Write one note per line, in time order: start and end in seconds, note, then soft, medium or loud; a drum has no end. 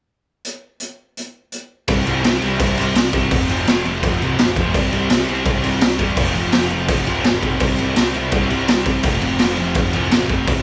0.45 closed hi-hat medium
0.80 closed hi-hat medium
1.17 closed hi-hat medium
1.52 closed hi-hat medium
1.88 2.04 C2 loud
1.88 2.05 C3 loud
1.88 2.05 G3 loud
1.88 2.07 C4 loud
1.88 kick loud
1.88 crash medium
2.05 2.23 C2 medium
2.05 2.23 C3 medium
2.05 2.23 G3 medium
2.05 2.24 C4 loud
2.05 crash medium
2.24 2.41 C2 loud
2.24 2.41 C3 medium
2.24 2.41 G3 medium
2.24 2.43 C4 medium
2.24 snare loud
2.24 crash medium
2.41 2.59 C2 medium
2.41 2.58 C3 medium
2.41 2.59 G3 medium
2.41 2.60 C4 loud
2.41 crash medium
2.59 2.95 C2 loud
2.59 2.76 C3 loud
2.59 2.77 G3 loud
2.59 2.79 C4 loud
2.59 kick loud
2.59 crash medium
2.77 2.94 C3 medium
2.77 2.95 G3 medium
2.77 2.96 C4 medium
2.77 crash medium
2.95 3.12 C2 loud
2.95 3.12 C3 medium
2.95 3.13 G3 medium
2.95 3.14 C4 loud
2.95 snare loud
2.95 crash medium
3.13 3.30 C2 medium
3.13 3.30 C3 medium
3.13 3.31 G3 medium
3.13 4.76 C4 loud
3.13 kick medium
3.13 crash medium
3.31 3.66 F1 medium
3.31 3.48 F2 loud
3.31 3.49 C3 loud
3.31 3.50 F3 loud
3.31 kick loud
3.31 crash medium
3.49 3.67 F2 medium
3.49 3.67 C3 medium
3.49 3.68 F3 loud
3.49 crash medium
3.67 3.85 F1 medium
3.67 3.84 F2 medium
3.67 3.85 C3 medium
3.67 3.85 F3 medium
3.67 snare loud
3.67 crash medium
3.85 4.03 F1 loud
3.85 4.02 F2 medium
3.85 4.03 C3 medium
3.85 4.04 F3 loud
3.85 crash medium
4.03 4.20 F1 loud
4.03 4.21 F2 loud
4.03 4.22 C3 loud
4.03 4.23 F3 loud
4.03 kick loud
4.03 crash medium
4.21 4.38 C2 medium
4.21 4.38 F2 medium
4.21 4.39 C3 medium
4.21 4.39 F3 loud
4.21 crash medium
4.39 4.56 A1 loud
4.39 4.56 F2 loud
4.39 4.57 C3 loud
4.39 4.57 F3 loud
4.39 snare loud
4.39 crash medium
4.56 4.74 F1 medium
4.56 4.74 F2 medium
4.56 4.74 C3 medium
4.56 4.74 F3 medium
4.56 kick medium
4.56 crash medium
4.74 4.92 C2 medium
4.74 4.91 C3 medium
4.74 4.92 G3 loud
4.74 4.93 C4 loud
4.74 kick loud
4.74 crash medium
4.92 5.10 C2 medium
4.92 5.09 C3 medium
4.92 5.10 G3 medium
4.92 5.11 C4 medium
4.92 crash medium
5.10 5.27 C2 loud
5.10 5.28 C3 medium
5.10 5.28 G3 medium
5.10 5.29 C4 medium
5.10 snare loud
5.10 crash medium
5.28 5.45 C2 medium
5.28 5.45 C3 medium
5.28 5.45 G3 medium
5.28 5.47 C4 medium
5.28 crash medium
5.46 5.81 C2 loud
5.46 5.62 C3 loud
5.46 5.62 G3 loud
5.46 5.64 C4 loud
5.46 kick loud
5.46 crash medium
5.63 5.79 C3 medium
5.63 5.80 G3 medium
5.63 5.82 C4 medium
5.63 crash medium
5.81 5.99 C2 loud
5.81 5.97 C3 medium
5.81 5.98 G3 medium
5.81 5.99 C4 loud
5.81 snare loud
5.81 crash medium
5.99 6.17 E2 medium
5.99 6.16 C3 medium
5.99 6.16 G3 medium
5.99 7.62 C4 medium
5.99 kick medium
5.99 crash medium
6.17 6.52 F1 medium
6.17 6.34 F2 loud
6.17 6.34 C3 loud
6.17 6.35 F3 loud
6.17 kick loud
6.17 crash medium
6.35 6.52 F2 medium
6.35 6.53 C3 loud
6.35 6.53 F3 loud
6.35 crash medium
6.52 6.70 F1 medium
6.52 6.70 F2 medium
6.52 6.70 C3 medium
6.52 6.71 F3 medium
6.52 snare loud
6.52 crash medium
6.70 6.88 F1 loud
6.70 6.88 F2 medium
6.70 6.89 C3 medium
6.70 6.89 F3 loud
6.70 crash medium
6.88 7.06 F1 loud
6.88 7.06 F2 loud
6.88 7.06 C3 loud
6.88 7.07 F3 loud
6.88 kick loud
6.88 crash medium
7.07 7.24 C2 medium
7.07 7.23 F2 medium
7.07 7.24 C3 medium
7.07 7.25 F3 medium
7.07 crash medium
7.24 7.42 A1 loud
7.24 7.42 F2 medium
7.24 7.43 C3 loud
7.24 7.43 F3 loud
7.24 snare loud
7.24 crash medium
7.42 7.60 B1 medium
7.42 7.60 F2 medium
7.42 7.59 C3 medium
7.42 7.61 F3 medium
7.42 kick medium
7.42 crash medium
7.60 7.77 C2 medium
7.60 7.78 C3 medium
7.60 7.79 G3 loud
7.60 7.80 C4 loud
7.60 kick loud
7.60 crash medium
7.78 7.96 C2 medium
7.78 7.96 C3 medium
7.78 7.97 G3 medium
7.78 7.98 C4 medium
7.78 crash medium
7.96 8.14 C2 loud
7.96 8.13 C3 medium
7.96 8.14 G3 medium
7.96 8.15 C4 medium
7.96 snare loud
7.96 crash medium
8.14 8.31 C2 medium
8.14 8.31 C3 medium
8.14 8.32 G3 medium
8.14 8.33 C4 medium
8.14 crash medium
8.31 8.67 C2 loud
8.31 8.49 C3 loud
8.31 8.50 G3 loud
8.31 8.51 C4 loud
8.31 kick loud
8.31 crash medium
8.50 8.68 C3 medium
8.50 8.68 G3 medium
8.50 8.70 C4 medium
8.50 crash medium
8.68 8.85 C2 medium
8.68 8.86 C3 medium
8.68 8.87 G3 medium
8.68 8.88 C4 medium
8.68 snare loud
8.68 crash medium
8.86 9.03 C2 medium
8.86 9.03 C3 medium
8.86 9.04 G3 medium
8.86 10.48 C4 medium
8.86 kick medium
8.86 crash medium
9.03 9.39 F1 loud
9.03 9.21 F2 loud
9.03 9.21 C3 loud
9.03 9.22 F3 loud
9.03 kick loud
9.03 crash medium
9.21 9.39 F2 medium
9.21 9.40 C3 loud
9.21 9.40 F3 loud
9.21 crash medium
9.39 9.57 F1 loud
9.39 9.57 F2 medium
9.39 9.58 C3 medium
9.39 9.58 F3 loud
9.39 snare loud
9.39 crash medium
9.57 9.75 F1 loud
9.57 9.75 F2 medium
9.57 9.75 C3 medium
9.57 9.76 F3 medium
9.57 crash medium
9.74 9.93 F1 loud
9.74 9.92 F2 loud
9.74 9.93 C3 loud
9.74 9.94 F3 loud
9.74 kick loud
9.74 crash medium
9.93 10.11 C2 medium
9.93 10.10 F2 medium
9.93 10.11 C3 medium
9.93 10.12 F3 medium
9.93 crash medium
10.11 10.29 A1 medium
10.11 10.29 F2 medium
10.11 10.30 C3 medium
10.11 10.30 F3 medium
10.11 snare loud
10.11 crash medium
10.29 10.47 F1 medium
10.29 10.47 F2 medium
10.29 10.46 C3 medium
10.29 10.47 F3 medium
10.29 kick medium
10.29 crash medium
10.47 10.62 C2 medium
10.47 10.62 C3 loud
10.47 10.62 G3 loud
10.47 10.62 C4 loud
10.47 kick loud
10.47 crash medium